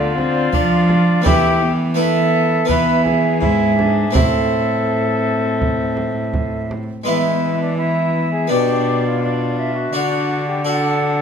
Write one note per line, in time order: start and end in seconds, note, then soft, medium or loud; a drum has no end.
0.00 0.49 D3 medium
0.00 0.53 D3 medium
0.00 0.17 A3 medium
0.00 1.19 A3 medium
0.00 1.20 D4 medium
0.00 1.20 F4 medium
0.00 1.22 F4 medium
0.00 0.51 D5 medium
0.18 0.56 C4 medium
0.18 frame drum soft
0.53 1.21 F3 medium
0.53 1.24 F3 medium
0.53 1.27 D4 medium
0.53 1.29 D5 medium
0.53 frame drum medium
0.89 frame drum soft
1.22 2.65 E3 medium
1.22 1.93 A3 soft
1.22 1.94 B3 medium
1.22 1.95 E4 soft
1.22 1.63 E4 medium
1.22 1.71 G4 loud
1.26 2.66 E3 medium
1.26 1.73 E5 medium
1.26 frame drum medium
1.62 2.68 B3 medium
1.94 2.65 A3 medium
1.94 2.64 B3 soft
1.94 2.66 E4 medium
1.94 2.72 A4 medium
2.00 2.66 E5 medium
2.65 3.37 E3 medium
2.65 4.09 B3 medium
2.65 3.43 B3 medium
2.65 4.09 E4 soft
2.69 3.44 E3 medium
2.69 3.03 B4 medium
2.69 3.40 E5 medium
2.69 frame drum medium
3.04 4.12 G#4 medium
3.04 frame drum medium
3.41 4.10 G#2 soft
3.41 4.15 G#2 medium
3.41 3.77 E4 medium
3.41 4.13 E5 medium
3.41 frame drum medium
3.78 4.16 D4 medium
3.78 frame drum medium
4.11 6.83 A2 soft
4.11 7.01 A3 soft
4.11 7.02 C4 soft
4.11 6.87 C4 medium
4.11 7.02 E4 soft
4.15 6.83 A2 medium
4.15 6.67 A4 medium
4.15 6.71 E5 medium
4.15 frame drum medium
5.62 frame drum medium
5.97 frame drum soft
6.33 frame drum medium
6.71 frame drum soft
7.04 8.53 E3 medium
7.04 8.47 E3 soft
7.04 8.46 G#3 soft
7.04 8.46 B3 soft
7.04 7.57 E4 medium
7.04 8.47 E4 soft
7.04 7.76 E5 medium
7.08 7.76 B3 soft
7.62 7.77 D4 medium
7.77 8.52 B3 soft
7.77 8.31 E4 medium
7.77 8.52 E5 medium
8.32 8.50 G#4 medium
8.47 9.91 B2 soft
8.47 9.89 B3 soft
8.47 9.90 D4 soft
8.47 9.22 D4 medium
8.47 9.04 G4 medium
8.47 9.23 D5 medium
8.52 9.94 B2 medium
9.07 9.22 F4 medium
9.23 9.93 D4 medium
9.23 9.75 F4 medium
9.23 9.60 D5 soft
9.59 9.95 E5 soft
9.75 10.47 F#4 medium
9.93 11.22 D3 medium
9.93 11.22 D3 soft
9.93 10.63 D4 soft
9.93 10.66 D4 medium
9.93 10.64 F#4 soft
9.93 10.67 F#5 medium
10.48 10.64 G4 medium
10.65 11.22 D4 soft
10.65 11.22 D4 medium
10.65 11.22 F#4 soft
10.65 11.22 A4 medium
10.65 11.22 F#5 medium